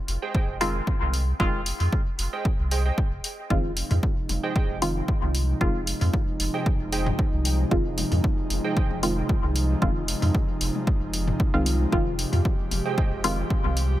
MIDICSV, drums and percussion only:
0, 0, Header, 1, 2, 480
1, 0, Start_track
1, 0, Key_signature, -4, "minor"
1, 0, Tempo, 526316
1, 1276, Time_signature, 4, 2, 24, 8
1, 12768, End_track
2, 0, Start_track
2, 0, Title_t, "Drums"
2, 76, Note_on_c, 9, 46, 67
2, 167, Note_off_c, 9, 46, 0
2, 315, Note_on_c, 9, 36, 108
2, 406, Note_off_c, 9, 36, 0
2, 556, Note_on_c, 9, 46, 74
2, 647, Note_off_c, 9, 46, 0
2, 795, Note_on_c, 9, 36, 109
2, 886, Note_off_c, 9, 36, 0
2, 1036, Note_on_c, 9, 46, 67
2, 1127, Note_off_c, 9, 46, 0
2, 1275, Note_on_c, 9, 36, 115
2, 1366, Note_off_c, 9, 36, 0
2, 1515, Note_on_c, 9, 46, 77
2, 1606, Note_off_c, 9, 46, 0
2, 1643, Note_on_c, 9, 46, 30
2, 1735, Note_off_c, 9, 46, 0
2, 1755, Note_on_c, 9, 36, 108
2, 1846, Note_off_c, 9, 36, 0
2, 1996, Note_on_c, 9, 46, 67
2, 2087, Note_off_c, 9, 46, 0
2, 2235, Note_on_c, 9, 36, 112
2, 2327, Note_off_c, 9, 36, 0
2, 2475, Note_on_c, 9, 46, 73
2, 2566, Note_off_c, 9, 46, 0
2, 2715, Note_on_c, 9, 36, 109
2, 2806, Note_off_c, 9, 36, 0
2, 2956, Note_on_c, 9, 46, 71
2, 3047, Note_off_c, 9, 46, 0
2, 3195, Note_on_c, 9, 36, 113
2, 3286, Note_off_c, 9, 36, 0
2, 3435, Note_on_c, 9, 46, 82
2, 3527, Note_off_c, 9, 46, 0
2, 3564, Note_on_c, 9, 45, 96
2, 3564, Note_on_c, 9, 46, 33
2, 3655, Note_off_c, 9, 45, 0
2, 3655, Note_off_c, 9, 46, 0
2, 3675, Note_on_c, 9, 36, 111
2, 3766, Note_off_c, 9, 36, 0
2, 3915, Note_on_c, 9, 46, 71
2, 3916, Note_on_c, 9, 48, 44
2, 4007, Note_off_c, 9, 46, 0
2, 4007, Note_off_c, 9, 48, 0
2, 4155, Note_on_c, 9, 36, 114
2, 4246, Note_off_c, 9, 36, 0
2, 4396, Note_on_c, 9, 46, 78
2, 4487, Note_off_c, 9, 46, 0
2, 4635, Note_on_c, 9, 36, 110
2, 4726, Note_off_c, 9, 36, 0
2, 4764, Note_on_c, 9, 48, 44
2, 4855, Note_off_c, 9, 48, 0
2, 4875, Note_on_c, 9, 46, 73
2, 4967, Note_off_c, 9, 46, 0
2, 5115, Note_on_c, 9, 36, 118
2, 5206, Note_off_c, 9, 36, 0
2, 5356, Note_on_c, 9, 46, 81
2, 5447, Note_off_c, 9, 46, 0
2, 5483, Note_on_c, 9, 45, 92
2, 5484, Note_on_c, 9, 46, 33
2, 5574, Note_off_c, 9, 45, 0
2, 5575, Note_off_c, 9, 46, 0
2, 5595, Note_on_c, 9, 36, 120
2, 5595, Note_on_c, 9, 48, 46
2, 5686, Note_off_c, 9, 36, 0
2, 5686, Note_off_c, 9, 48, 0
2, 5835, Note_on_c, 9, 46, 76
2, 5927, Note_off_c, 9, 46, 0
2, 6075, Note_on_c, 9, 36, 123
2, 6166, Note_off_c, 9, 36, 0
2, 6316, Note_on_c, 9, 46, 82
2, 6407, Note_off_c, 9, 46, 0
2, 6443, Note_on_c, 9, 45, 94
2, 6443, Note_on_c, 9, 48, 47
2, 6534, Note_off_c, 9, 45, 0
2, 6534, Note_off_c, 9, 48, 0
2, 6555, Note_on_c, 9, 36, 117
2, 6646, Note_off_c, 9, 36, 0
2, 6795, Note_on_c, 9, 46, 76
2, 6887, Note_off_c, 9, 46, 0
2, 7035, Note_on_c, 9, 36, 126
2, 7126, Note_off_c, 9, 36, 0
2, 7275, Note_on_c, 9, 46, 85
2, 7275, Note_on_c, 9, 48, 49
2, 7366, Note_off_c, 9, 46, 0
2, 7367, Note_off_c, 9, 48, 0
2, 7403, Note_on_c, 9, 45, 92
2, 7403, Note_on_c, 9, 46, 33
2, 7494, Note_off_c, 9, 46, 0
2, 7495, Note_off_c, 9, 45, 0
2, 7515, Note_on_c, 9, 36, 119
2, 7606, Note_off_c, 9, 36, 0
2, 7755, Note_on_c, 9, 46, 76
2, 7846, Note_off_c, 9, 46, 0
2, 7995, Note_on_c, 9, 36, 127
2, 8086, Note_off_c, 9, 36, 0
2, 8123, Note_on_c, 9, 48, 46
2, 8214, Note_off_c, 9, 48, 0
2, 8235, Note_on_c, 9, 46, 82
2, 8326, Note_off_c, 9, 46, 0
2, 8475, Note_on_c, 9, 36, 116
2, 8566, Note_off_c, 9, 36, 0
2, 8715, Note_on_c, 9, 46, 77
2, 8806, Note_off_c, 9, 46, 0
2, 8955, Note_on_c, 9, 36, 120
2, 8955, Note_on_c, 9, 48, 46
2, 9046, Note_off_c, 9, 36, 0
2, 9046, Note_off_c, 9, 48, 0
2, 9195, Note_on_c, 9, 46, 83
2, 9286, Note_off_c, 9, 46, 0
2, 9323, Note_on_c, 9, 45, 89
2, 9324, Note_on_c, 9, 46, 34
2, 9414, Note_off_c, 9, 45, 0
2, 9415, Note_off_c, 9, 46, 0
2, 9435, Note_on_c, 9, 36, 118
2, 9526, Note_off_c, 9, 36, 0
2, 9675, Note_on_c, 9, 46, 74
2, 9767, Note_off_c, 9, 46, 0
2, 9803, Note_on_c, 9, 48, 46
2, 9894, Note_off_c, 9, 48, 0
2, 9915, Note_on_c, 9, 36, 123
2, 10006, Note_off_c, 9, 36, 0
2, 10155, Note_on_c, 9, 46, 81
2, 10246, Note_off_c, 9, 46, 0
2, 10283, Note_on_c, 9, 45, 92
2, 10375, Note_off_c, 9, 45, 0
2, 10395, Note_on_c, 9, 36, 120
2, 10486, Note_off_c, 9, 36, 0
2, 10635, Note_on_c, 9, 46, 73
2, 10635, Note_on_c, 9, 48, 46
2, 10726, Note_off_c, 9, 46, 0
2, 10726, Note_off_c, 9, 48, 0
2, 10875, Note_on_c, 9, 36, 114
2, 10966, Note_off_c, 9, 36, 0
2, 11116, Note_on_c, 9, 46, 82
2, 11207, Note_off_c, 9, 46, 0
2, 11242, Note_on_c, 9, 45, 90
2, 11244, Note_on_c, 9, 46, 32
2, 11334, Note_off_c, 9, 45, 0
2, 11335, Note_off_c, 9, 46, 0
2, 11355, Note_on_c, 9, 36, 111
2, 11446, Note_off_c, 9, 36, 0
2, 11595, Note_on_c, 9, 48, 43
2, 11596, Note_on_c, 9, 46, 71
2, 11686, Note_off_c, 9, 48, 0
2, 11687, Note_off_c, 9, 46, 0
2, 11835, Note_on_c, 9, 36, 117
2, 11926, Note_off_c, 9, 36, 0
2, 12076, Note_on_c, 9, 46, 84
2, 12167, Note_off_c, 9, 46, 0
2, 12315, Note_on_c, 9, 36, 113
2, 12406, Note_off_c, 9, 36, 0
2, 12443, Note_on_c, 9, 48, 45
2, 12534, Note_off_c, 9, 48, 0
2, 12556, Note_on_c, 9, 46, 74
2, 12647, Note_off_c, 9, 46, 0
2, 12768, End_track
0, 0, End_of_file